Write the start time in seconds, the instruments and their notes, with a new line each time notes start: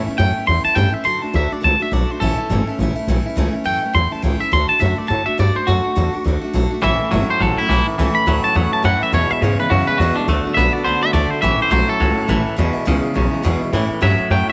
0.07 steel-string acoustic guitar A3 C#4 E4, muted upright bass stroke
0.18 upright bass F#2, steel-string acoustic guitar A2 E3 A3 C#4 E4, clean electric guitar G5
0.36 steel-string acoustic guitar A3 C#4 E4
0.46 upright bass E2, steel-string acoustic guitar E3 A3 C#4 E4, clean electric guitar C6
0.64 steel-string acoustic guitar A3 C#4 E4, clean electric guitar A5, muted upright bass stroke
0.75 upright bass G2, steel-string acoustic guitar A2 E3 A3 C#4 E4, clean electric guitar G5
0.92 steel-string acoustic guitar A3 C#4 E4, clean electric guitar E5, muted upright bass stroke
1.04 upright bass F#2, steel-string acoustic guitar D3 A3 D4 F#4, clean electric guitar C6
1.21 steel-string acoustic guitar A3 D4 F#4, clean electric guitar A5, muted upright bass stroke
1.33 upright bass D2, steel-string acoustic guitar D3 A3 D4 F#4, clean electric guitar E5
1.50 steel-string acoustic guitar A3 D4 F#4, clean electric guitar D5, muted upright bass stroke
1.61 upright bass C#2, steel-string acoustic guitar D3 A3 D4 F#4, clean electric guitar A5
1.80 steel-string acoustic guitar A3 D4 F#4, clean electric guitar E5, muted upright bass stroke
1.91 upright bass B1, steel-string acoustic guitar D3 A3 D4 F#4, clean electric guitar D5
2.10 steel-string acoustic guitar A3 D4 F#4, clean electric guitar C5, muted upright bass stroke
2.20 upright bass A1, steel-string acoustic guitar A2 E3 A3 C#4 E4, clean electric guitar A4
2.37 steel-string acoustic guitar A3 C#4 E4, muted upright bass stroke
2.50 upright bass G1, steel-string acoustic guitar A2 E3 A3 C#4 E4
2.67 steel-string acoustic guitar A3 C#4 E4
2.78 upright bass A1, steel-string acoustic guitar E3 A3 C#4
2.83 steel-string acoustic guitar E4
2.96 steel-string acoustic guitar A3 C#4 E4, muted upright bass stroke
3.07 upright bass B1, steel-string acoustic guitar A2 E3 A3 C#4 E4
3.25 steel-string acoustic guitar A3 C#4 E4, muted upright bass stroke
3.36 upright bass C#2, steel-string acoustic guitar A2 E3 A3 C#4 E4
3.53 steel-string acoustic guitar A3 C#4 E4, muted upright bass stroke
3.64 upright bass F#2, steel-string acoustic guitar A2 E3 A3 C#4 E4, clean electric guitar G5
3.82 steel-string acoustic guitar A3 C#4 E4, muted upright bass stroke
3.93 upright bass E2, steel-string acoustic guitar E3 A3 C#4 E4, clean electric guitar C6
4.11 steel-string acoustic guitar A3 C#4 E4, clean electric guitar A5, muted upright bass stroke
4.22 upright bass C#2, steel-string acoustic guitar A2 E3 A3 C#4 E4, clean electric guitar G5
4.40 steel-string acoustic guitar A3 C#4 E4, clean electric guitar E5
4.52 upright bass D2, steel-string acoustic guitar D3 A3 D4 F#4, clean electric guitar C6
4.69 steel-string acoustic guitar A3 D4 F#4, clean electric guitar A5
4.79 upright bass F#2, steel-string acoustic guitar D3 A3 D4 F#4, clean electric guitar E5
4.96 steel-string acoustic guitar A3 D4 F#4, clean electric guitar D5, muted upright bass stroke
5.07 upright bass A2, steel-string acoustic guitar D3 A3 D4 F#4, clean electric guitar A5
5.26 steel-string acoustic guitar A3 D4 F#4, clean electric guitar E5, muted upright bass stroke
5.38 upright bass G2, steel-string acoustic guitar D3 A3 D4 F#4, clean electric guitar D5
5.55 steel-string acoustic guitar A3 D4 F#4, clean electric guitar C5, muted upright bass stroke
5.67 upright bass F#2, steel-string acoustic guitar D3 A3 D4 F#4, clean electric guitar F#4
5.83 steel-string acoustic guitar A3 D4 F#4, muted upright bass stroke
5.95 upright bass E2, steel-string acoustic guitar D3 A3 D4 F#4
6.13 steel-string acoustic guitar A3 D4 F#4, muted upright bass stroke
6.24 upright bass D2, steel-string acoustic guitar D3 A3 D4 F#4
6.41 steel-string acoustic guitar A3 D4 F#4, muted upright bass stroke
6.53 upright bass B1, steel-string acoustic guitar D3 A3 D4 F#4
6.71 steel-string acoustic guitar A3 D4 F#4, muted upright bass stroke
6.81 upright bass A1, steel-string acoustic guitar A2 E3 A3 C#4 E4, clean electric guitar E5
7.00 steel-string acoustic guitar A3 C#4 E4, muted upright bass stroke
7.11 upright bass G1, steel-string acoustic guitar A2 E3 A3 C#4 E4, clean electric guitar F#3
7.28 steel-string acoustic guitar A3 C#4 E4, clean electric guitar C5
7.40 upright bass A1, clean electric guitar A2 F#3 A4, steel-string acoustic guitar E3 A3 C#4 E4
7.58 steel-string acoustic guitar A3 C#4 E4, clean electric guitar E4, muted upright bass stroke
7.69 upright bass B1, steel-string acoustic guitar A2 E3 A3 C#4 E4
7.87 steel-string acoustic guitar A3 C#4 E4
7.99 upright bass C#2, steel-string acoustic guitar A2 E3 A3 C#4 E4
8.15 steel-string acoustic guitar A3 C#4 E4, clean electric guitar B5, muted upright bass stroke
8.26 upright bass D2, steel-string acoustic guitar A2 E3 A3 C#4 E4, clean electric guitar F#3
8.43 steel-string acoustic guitar A3 C#4 E4, clean electric guitar A5
8.54 upright bass E2, clean electric guitar A2 F#3 F#5, steel-string acoustic guitar E3 A3 C#4 E4
8.71 steel-string acoustic guitar A3 C#4 E4, clean electric guitar A5
8.82 upright bass F#2, steel-string acoustic guitar A2 E3 A3 C#4 E4, clean electric guitar F#5
9.00 steel-string acoustic guitar A3 C#4 E4, clean electric guitar E5, muted upright bass stroke
9.12 steel-string acoustic guitar E2 B2 E3 G#3 B3 E4, upright bass E2, clean electric guitar C#5
9.29 steel-string acoustic guitar E3 G#3 B3 E4, clean electric guitar E5, muted upright bass stroke
9.42 steel-string acoustic guitar E2 B2 E3 G#3 B3 E4, upright bass G#2, clean electric guitar C#3 C#5
9.59 steel-string acoustic guitar E3 G#3 B3 E4, clean electric guitar B4
9.70 clean electric guitar E2 C#3 F#4, upright bass F#2, steel-string acoustic guitar E3 G#3 B3 E4
9.87 steel-string acoustic guitar E3 G#3 B3 E4, clean electric guitar B4, muted upright bass stroke
9.98 upright bass E2, steel-string acoustic guitar E2 B2 E3 G#3, clean electric guitar F#4
10.02 steel-string acoustic guitar B3 E4
10.16 steel-string acoustic guitar G#3 B3 E4, clean electric guitar D4
10.20 steel-string acoustic guitar E3
10.27 upright bass D2, steel-string acoustic guitar D3 A3 D4 F#4
10.45 steel-string acoustic guitar D4 F#4, muted upright bass stroke
10.49 steel-string acoustic guitar A3
10.54 upright bass B1, steel-string acoustic guitar D3, clean electric guitar B3 E5
10.59 steel-string acoustic guitar A3 D4 F#4
10.73 steel-string acoustic guitar D4 F#4, clean electric guitar D5
10.78 steel-string acoustic guitar A3
10.84 upright bass C#2, steel-string acoustic guitar D3 A3 D4, clean electric guitar B3 C5
10.89 steel-string acoustic guitar F#4
11.01 steel-string acoustic guitar A3 D4 F#4, clean electric guitar E5, muted upright bass stroke
11.13 upright bass D2, steel-string acoustic guitar D3 A3 D4 F#4, clean electric guitar D5
11.30 steel-string acoustic guitar A3 D4 F#4, clean electric guitar C5, muted upright bass stroke
11.42 upright bass A1, steel-string acoustic guitar A2 E3 A3 C#4 E4, clean electric guitar E5
11.58 steel-string acoustic guitar A3 C#4 E4, clean electric guitar C5, muted upright bass stroke
11.70 upright bass B1, steel-string acoustic guitar A2 E3 A3 C#4 E4, clean electric guitar F#3 C5
11.88 steel-string acoustic guitar A3 C#4 E4, clean electric guitar A4
12.00 upright bass C#2, clean electric guitar A2 F#3, steel-string acoustic guitar E3 A3 C#4 E4
12.17 steel-string acoustic guitar A3 C#4 E4, muted upright bass stroke
12.28 upright bass A1, steel-string acoustic guitar A2 E3 A3 C#4 E4
12.45 steel-string acoustic guitar A3 C#4 E4, muted upright bass stroke
12.57 steel-string acoustic guitar E2 B2 E3 G#3 B3 E4, upright bass E2
12.73 steel-string acoustic guitar E3 G#3 B3 E4, muted upright bass stroke
12.85 upright bass C#2, steel-string acoustic guitar E2 B2 E3 G#3 B3 E4, clean electric guitar C#3
13.02 steel-string acoustic guitar E3 G#3 B3 E4
13.14 upright bass B1, clean electric guitar E2 C#3, steel-string acoustic guitar E3 G#3 B3 E4
13.31 steel-string acoustic guitar E3 G#3 B3 E4, muted upright bass stroke
13.42 steel-string acoustic guitar E2 B2 E3 G#3 B3 E4, upright bass E2
13.61 steel-string acoustic guitar E3 G#3 B3 E4, muted upright bass stroke
13.73 upright bass A2, steel-string acoustic guitar A2 E3 A3 C#4 E4
13.89 steel-string acoustic guitar C#4 E4, muted upright bass stroke
13.93 steel-string acoustic guitar A3
14.01 upright bass G2, steel-string acoustic guitar A2 E3 A3 C#4 E4, clean electric guitar F#3 E5
14.18 steel-string acoustic guitar A3 C#4 E4, muted upright bass stroke
14.30 upright bass F#2, clean electric guitar A2 F#3 G5, steel-string acoustic guitar E3 A3 C#4 E4
14.48 steel-string acoustic guitar E4, muted upright bass stroke